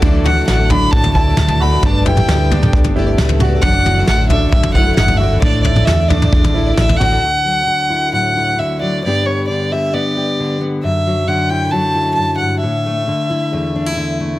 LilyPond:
<<
  \new Staff \with { instrumentName = "Fiddle" } { \time 4/4 \key d \major \tempo 4 = 133 r8 fis''8 fis''8 b''8 a''8 a''4 b''8 | a''8 g''4. r2 | fis''4 fis''8 e''8 e''8 fis''8 fis''8 e''8 | d''8 d''8 e''8 d''4. e''8 fis''8~ |
fis''2 fis''4 e''8 d''8 | d''8 cis''8 d''8 e''8 d''4. r8 | e''4 fis''8 g''8 a''4 a''8 fis''8 | e''2. r4 | }
  \new Staff \with { instrumentName = "Twelve-string acoustic guitar" } { \time 4/4 \key d \major <d e fis a a' d''>8. <e a a' d''>16 <d e fis a a' d''>16 <e a a' d''>16 <e a a' d''>4 <e a a' d''>16 <e a a' d''>16 <d e fis a a' d''>16 <e a a' d''>16 <e a a' d''>16 <e a a' d''>16 | <g a b a' d''>8. <a a' d''>16 <g a b a' d''>8 <a b a' d''>4 <a b a' d''>16 <a a' d''>16 <g a b a' d''>16 <a a' d''>16 <a b a' d''>16 <a a' d''>16 | <fis, e fis a a' d''>8. <e a a' d''>16 <fis, e fis a a' d''>16 <e a a' d''>16 <e a a' d''>4 <e a a' d''>16 <e a a' d''>16 <fis, e fis a a' d''>16 <e a a' d''>16 <e a a' d''>16 <e a a' d''>16 | <a e' a' d''>8. <e' a' d''>16 <a e' a' d''>16 <e' a' d''>16 <a e' a' d''>4 <a e' a' d''>16 <e' a' d''>16 <a e' a' d''>16 <e' a' d''>16 <a e' a' d''>16 <e' a' d''>16 |
r1 | r1 | r1 | r1 | }
  \new Staff \with { instrumentName = "Upright piano" } { \time 4/4 \key d \major d'8 fis'4 d'4 e'4 fis'8 | d'8 e'4 d'4 e'4 fis'8 | d'8 fis'4 d'4 e'4 fis'8 | d'8 e'4 d'4 e'4 fis'8 |
r1 | r1 | r1 | r1 | }
  \new Staff \with { instrumentName = "Steel-string acoustic guitar" } { \clef bass \time 4/4 \key d \major << { <d fis a e'>8 e'4 fis8 a8 e'4 a8~ | a8 g'4 b8 d'8 g'4 d'8 | <d fis a e'>8 e'4 fis8 a8 e'4 a8~ | a8 e'4 a8 d'8 e'4 d'8 |
r8 fis4 e'8 fis8 e'4 fis8 | <d b d' g'>8 b4 g'8 b8 g'4 b8 | r8 fis4 e'8 fis8 e'4. | r8 a4 e'8 a8 d'16 e'8. a8 | } \\ { d,4 d4 a,4 d4 | g,4 d2 r4 | fis,4 d4 fis,4 d4 | a,4 d4 e,4 d4 |
d,4 d4 a,4 d4 | g,4 d4 d4 d4 | fis,4 d4 fis,4 fis,8 g,8 | a,4 d4 e,4 d4 | } >> }
  \new Staff \with { instrumentName = "Fretless electric bass" } { \clef bass \time 4/4 \key d \major d,4 a,,4 a,,16 d,8. d,4 | g,,4 d,4 d,16 g,,8. cis,4 | fis,,4 a,,4 a,,16 fis,,8. g,,4 | a,,4 e,4 e,16 a,,8. a,,4 |
r1 | r1 | r1 | r1 | }
  \new DrumStaff \with { instrumentName = "Drums" } \drummode { \time 4/4 <bd tomfh>8 tomfh8 sn8 tomfh8 bd16 tomfh16 bd8 <sn toml>16 tomfh8. | <bd tomfh>8 tomfh16 toml16 sn8 tomfh16 toml16 bd16 tomfh8. <sn toml>16 tomfh16 toml8 | <bd tomfh>8 tomfh8 sn8 tomfh8 bd16 tomfh16 bd8 <sn toml>16 tomfh8. | <bd tomfh>8 tomfh16 toml16 sn8 tomfh16 toml16 bd16 tomfh8. <sn toml>16 tomfh16 toml8 |
r4 r4 r4 r4 | r4 r4 r4 r4 | r4 r4 r4 r4 | r4 r4 r4 r4 | }
>>